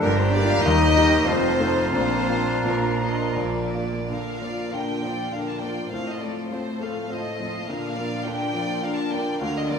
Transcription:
Already playing: clarinet D4
0.00 double bass section G1, cello section G2, bassoon G3, french horn section A#3, oboe G4, violin section A#4
0.05 grand piano G1 G2, flute A#5
0.15 french horn section C4, violin section C5
0.20 violin section C5
0.30 viola section G3 D4, french horn section D4, violin section D5
0.35 grand piano A#3 D4 G4
0.45 french horn section F4, violin section F5
0.59 cello section D#2, double bass section D#2, bassoon D#3, viola section G3 D#4, french horn section D#4, clarinet D#4, violin section D#5
0.64 grand piano D#2 D#3, violin section D#5
0.92 viola section G3 D#4
0.96 grand piano A#3 D#4 G4
1.24 double bass section F1, grand piano F1 F2, cello section F2, bassoon F3, viola section A3 D#4, french horn section C4, oboe F4, violin section C5, flute A5
1.56 viola section A3 D#4, grand piano A3
1.61 grand piano D#4 F4
1.92 double bass section A#1, grand piano A#1 A#2, cello section A#2, viola section A#3 D4, french horn section C4, clarinet D4, violin section C5, flute A#5
2.28 grand piano A#3 D4 F4, viola section A#3 D4
2.65 double bass section A#1, grand piano A#1 A#2, cello section A#2, french horn section A#3, violin section A#4
3.01 viola section A#3 D4, grand piano A#3 D4 F4, violin section D#5
3.35 grand piano A#1 A#2, double bass section A#1, violin section D5
3.40 cello section A#2
3.75 grand piano A#3 D4 F4, viola section A#3 D4
4.09 grand piano A#2, cello section A#2, viola section D3 D4, violin section D4 A#4 F5, french horn section D4 F4
4.42 viola section F3 A#3, grand piano A#3, violin section F4 D5
4.71 viola section D3 D4, grand piano D4 F4, violin section D4 A#4 G5
5.03 grand piano F3, viola section F3 A#3, violin section F4 D5
5.31 viola section D3 D4, grand piano D4 F4, violin section D4 A#4 F5, french horn section D4 F4
5.46 violin section A5
5.58 viola section F3 A#3, violin section G5
5.63 grand piano A#3, violin section F4 D5
5.91 cello section A2, grand piano A2, viola section A3 C4, french horn section C4, violin section A4 C5 F5
6.06 violin section D#5
6.19 viola section F3 A3, grand piano C4, violin section F4 A4 D5
6.49 viola section A3 C4, french horn section C4 F4, grand piano C4 F4, violin section A4 C5
6.80 viola section F3 A3, grand piano A3, violin section F4 A4 F5
7.09 viola section A3 C4, grand piano C4 F4, violin section A4 C5 D#5
7.39 viola section F3 A3, grand piano C4, violin section F4 A4
7.67 cello section A#2, grand piano A#2, viola section D3 D4, french horn section A#3 D4, violin section D4 A#4 F5
7.97 viola section F3 A#3, grand piano A#3, violin section F4 D5
8.24 viola section D3 D4, grand piano D4 F4, violin section D4 A#4 G5
8.54 grand piano F3, viola section F3 A#3, violin section F4 D5
8.82 viola section D3 D4, french horn section A#3 D4, grand piano D4 F4, violin section F5
8.87 violin section D4 A#4
8.97 violin section A5
9.11 viola section F3 A#3, grand piano A#3, violin section F4 G5
9.15 violin section D5
9.40 grand piano D2, cello section D3, viola section A#3 D4, violin section D4 A#4 F5
9.57 violin section D#5
9.67 viola section F3 A#3, grand piano A#3, violin section F4 D5

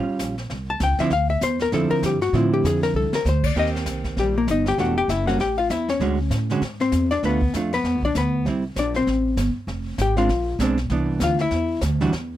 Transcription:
Already playing: hollow-body jazz guitar G3 C#4 F4
0.19 upright bass A#1, snare, hi-hat pedal
0.38 snare
0.50 upright bass C2, brush sweep, snare
0.70 hollow-body jazz guitar A5
0.80 upright bass C#2, hollow-body jazz guitar G5, snare, hi-hat pedal
0.99 hollow-body jazz guitar D3 F3 C4 E4 E5, muted upright bass stroke, snare
1.10 upright bass D2, hollow-body jazz guitar F5, brush sweep, snare
1.30 hollow-body jazz guitar E5
1.41 upright bass E2, hollow-body jazz guitar C5, snare, hi-hat pedal
1.59 hollow-body jazz guitar A#4, snare
1.72 upright bass F2, hollow-body jazz guitar D3 F3 C4 E4 A4, brush sweep, snare
1.91 hollow-body jazz guitar A#4, muted upright bass stroke
2.03 upright bass G2, hollow-body jazz guitar G4, snare, hi-hat pedal
2.21 hollow-body jazz guitar F#4, snare
2.33 upright bass A2, hollow-body jazz guitar D3 F3 C4 E4 F4, brush sweep, snare
2.54 hollow-body jazz guitar G4
2.64 upright bass F2, hollow-body jazz guitar G#4, snare, hi-hat pedal
2.83 hollow-body jazz guitar A#4, snare
2.94 upright bass C2, hollow-body jazz guitar A4
3.13 hollow-body jazz guitar A#4, snare
3.25 upright bass D2, hollow-body jazz guitar C5, snare, hi-hat pedal
3.44 hollow-body jazz guitar D5, kick, crash
3.55 upright bass D#2, hollow-body jazz guitar D#3 A#3 C4 G4 D#5, brush sweep, snare
3.66 snare
3.76 snare
3.86 upright bass C2, snare, hi-hat pedal
4.04 kick, snare
4.16 upright bass A#1, hollow-body jazz guitar G3 G4, brush sweep, snare
4.38 hollow-body jazz guitar A#3 A#4
4.47 upright bass G1, hollow-body jazz guitar D#4 D#5, snare, hi-hat pedal
4.66 hollow-body jazz guitar G4 G5, snare
4.78 upright bass E1, hollow-body jazz guitar E3 A3 D4 F#4 G4 F#5, brush sweep, snare
4.98 hollow-body jazz guitar G4 G5
5.08 upright bass F#1, hollow-body jazz guitar E4 E5, snare, hi-hat pedal
5.27 hollow-body jazz guitar G3 A#3 C#4 F#4 F#5, snare
5.39 upright bass A1, hollow-body jazz guitar G4 G5, brush sweep, snare
5.58 hollow-body jazz guitar F4 F5
5.70 upright bass E2, hollow-body jazz guitar E4 E5, snare, hi-hat pedal
5.88 hollow-body jazz guitar C#4 C#5, snare
6.00 upright bass D2, hollow-body jazz guitar D3 G#3 C#4 F#4, brush sweep, snare
6.30 upright bass A2, snare, hi-hat pedal
6.50 hollow-body jazz guitar D3 G#3 C#4 F#4, snare
6.61 upright bass G#2, brush sweep, snare
6.80 hollow-body jazz guitar C4 C5, snare
6.92 upright bass E2, snare, hi-hat pedal
7.11 hollow-body jazz guitar D4 D5, snare
7.23 upright bass D2, hollow-body jazz guitar A3 B3 D4 F4 B4, brush sweep, snare
7.42 kick
7.54 upright bass F2, hollow-body jazz guitar A3 D4 F4, snare, hi-hat pedal
7.73 hollow-body jazz guitar B3 B4, snare
7.84 upright bass E2, brush sweep, snare
7.95 upright bass D2
8.03 upright bass B1, hollow-body jazz guitar D4 D5, kick
8.15 upright bass D2, hollow-body jazz guitar B3 B4, snare, hi-hat pedal
8.45 upright bass C2, hollow-body jazz guitar G3 C4 E4, brush sweep, snare
8.76 upright bass A#1, hollow-body jazz guitar D5, snare, hi-hat pedal
8.80 hollow-body jazz guitar D4
8.94 hollow-body jazz guitar C4 C5, snare
9.06 upright bass A1, brush sweep, snare
9.37 upright bass G1, snare, hi-hat pedal
9.55 muted upright bass stroke
9.67 upright bass F1, brush sweep, snare
9.98 upright bass G#1, hollow-body jazz guitar G4 G5, snare, hi-hat pedal
10.16 hollow-body jazz guitar G#3 C4 D4 F4 F5, snare
10.29 upright bass A#1, brush sweep, snare
10.59 upright bass B1, hollow-body jazz guitar G#3 C4 D4, snare, hi-hat pedal
10.78 snare
10.90 upright bass C2, hollow-body jazz guitar E3 B3 D4, brush sweep, snare
11.20 upright bass D2, hollow-body jazz guitar F5, snare, hi-hat pedal
11.24 hollow-body jazz guitar F4
11.39 hollow-body jazz guitar E4 E5, snare
11.51 upright bass E2, brush sweep, snare
11.81 upright bass D2, snare, hi-hat pedal
12.01 hollow-body jazz guitar E3 G3 D4 F#4, snare
12.12 upright bass E2, brush sweep, snare

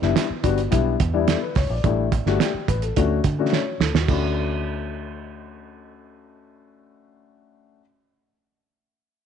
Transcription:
0.02 fingered electric bass F#1, upright piano G3 B3 D4 E4, snare
0.16 snare, closed hi-hat
0.30 muted fingered electric bass stroke
0.43 fingered electric bass G1, upright piano G3 B3 D4 F#4, kick, closed hi-hat
0.58 closed hi-hat
0.71 fingered electric bass B1, upright piano G3 B3 D4 E4, kick, closed hi-hat
1.00 fingered electric bass E2, kick, closed hi-hat
1.14 upright piano G3 B3 D4 E4
1.28 upright piano A4, snare, closed hi-hat
1.42 upright piano B4
1.55 fingered electric bass C#2, upright piano C#5, kick, snare, open hi-hat
1.70 fingered electric bass A#1, upright piano D5
1.84 fingered electric bass A1, upright piano G3 A3 D4 E4, kick, closed hi-hat
2.12 kick, closed hi-hat
2.26 fingered electric bass G1, upright piano G3 A3 D4 F#4, snare
2.40 upright piano G4, snare, closed hi-hat
2.54 muted fingered electric bass stroke
2.68 fingered electric bass A1, upright piano B4, kick, closed hi-hat
2.82 upright piano A4, closed hi-hat
2.96 fingered electric bass D2, upright piano A3 C#4 D4 F#4, kick, closed hi-hat
3.24 fingered electric bass D3, kick, closed hi-hat
3.39 upright piano A3 C#4 D4 F#4
3.53 upright piano C#5, snare
3.80 fingered electric bass D2, upright piano A4, snare
3.94 fingered electric bass D#2, upright piano F#4, snare
4.08 fingered electric bass D2, upright piano A3 C#4 D4 F#4, kick, crash

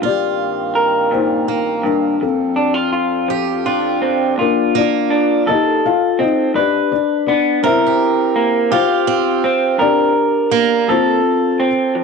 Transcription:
Already playing: harmonium G2 A#3
0.02 clean electric guitar G2, harmonium D#3, steel-string acoustic guitar F4, felt piano D5
0.06 harmonium C4, felt piano G4
0.75 clean electric guitar A#4
1.11 clean electric guitar A#2, felt piano D#4 C5
1.48 steel-string acoustic guitar A#3
1.83 clean electric guitar G2, felt piano D4 A#4
2.21 clean electric guitar F2, harmonium F2 F3 A4, felt piano A4
2.25 felt piano C4
2.56 clean electric guitar D4
2.74 clean electric guitar F4
2.93 clean electric guitar F4
3.28 clean electric guitar F3, steel-string acoustic guitar G4
3.66 steel-string acoustic guitar D4, clean electric guitar F4
4.02 clean electric guitar C4
4.38 clean electric guitar A#2 F4, felt piano F4 A#4
4.42 felt piano A#3 D4
4.75 steel-string acoustic guitar A#3, felt piano D4 F4 D5
5.10 clean electric guitar D4
5.46 clean electric guitar F2 A4, felt piano D#5
5.51 felt piano D#4 G4 A4
5.86 felt piano F4 F5
6.19 clean electric guitar C4, felt piano D#4 D#5
6.54 clean electric guitar G2 B4, felt piano D4 G4 B4 D5
6.92 felt piano D4 D5
7.27 clean electric guitar B3, felt piano D4 D5
7.63 clean electric guitar G2 A#4, steel-string acoustic guitar C4, felt piano E4 A#4 C5 E5
7.86 steel-string acoustic guitar G4
8.36 clean electric guitar A#3
8.71 clean electric guitar F2 G4, steel-string acoustic guitar F4, felt piano F4 C5 F5
9.07 steel-string acoustic guitar C4
9.44 clean electric guitar C4
9.78 clean electric guitar G2 A#4, felt piano D5
9.82 felt piano D4 G4 A#4
10.51 steel-string acoustic guitar A#3, clean electric guitar A#3
10.88 clean electric guitar F2 A4, felt piano C4 F4 A4 C5
11.60 clean electric guitar C4
11.95 clean electric guitar F3

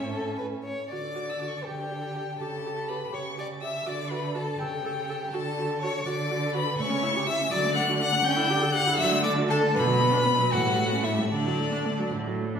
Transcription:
Already playing: cello A2, viola C#4, violin E5
0.11 violin A4
0.38 violin B4
0.64 violin C#5
0.90 cello D3, viola F#4, violin D5 D6
1.15 viola F#4
1.30 violin E6
1.40 viola F#4, violin D6
1.48 violin C#6
1.57 violin D6
1.65 cello D3, violin G4 G5, viola G4
1.90 viola G4
2.15 viola G4
2.39 cello C#3, viola G4, violin A4 A5
2.66 viola G4
2.88 viola G4, violin B4 B5
3.12 cello C#3, viola G4, violin C#5 C#6
3.37 viola G4, violin D5 D6
3.61 viola G4, violin E5 E6
3.86 cello D3, viola F#4, violin D5 D6
4.10 viola F#4, violin B4 B5
4.34 viola F#4, violin A4 A5
4.59 cello C#3, violin G4 G5, viola A4
4.85 viola A4
5.09 viola A4
5.31 cello D3, viola F#4, violin A4 A5
5.58 viola F#4
5.82 viola F#4, violin C#5 C#6
6.06 cello D3, viola F#4, violin D5 D6
6.30 viola F#4
6.54 viola F#4, violin B4 B5
6.79 cello C#3, viola A3, violin C#5 C#6
6.89 viola C#4
7.03 viola E4
7.16 viola G4
7.27 viola E4, violin E5 E6
7.40 viola C#4
7.52 cello D3, viola F#3, violin D5 D6
7.64 viola A3
7.74 viola D4, violin F#5 F#6
7.88 viola F#4
7.98 viola D4, violin F#5 F#6
8.12 viola A3
8.23 cello D3, viola C#4, violin G5 G6
8.37 viola E4
8.50 viola G4
8.62 viola A4
8.72 viola G4, violin F#5 F#6
8.87 viola E4
8.98 cello D3, viola F#3, violin E5 E6
9.11 viola A3
9.24 viola D4, violin D5 D6
9.37 viola F#4
9.49 viola D4, violin A4 A5
9.63 viola A3
9.74 cello B2, viola D3, violin B4 B5
9.87 viola F#3
10.00 viola B3
10.13 viola D4
10.26 viola B3
10.39 viola F#3
10.52 cello A2, viola E3, violin F#4 F#5
10.66 viola G3
10.79 viola A3
10.93 viola C#4
11.04 viola A3, violin E4 E5
11.18 viola G3
11.31 cello D3, viola D3, violin D4 D5
11.46 viola F#3
11.59 viola A3
11.72 viola D4
11.86 viola A3
11.99 viola F#3
12.12 cello A2, viola D3
12.27 viola F#3
12.41 viola A3
12.55 viola D4

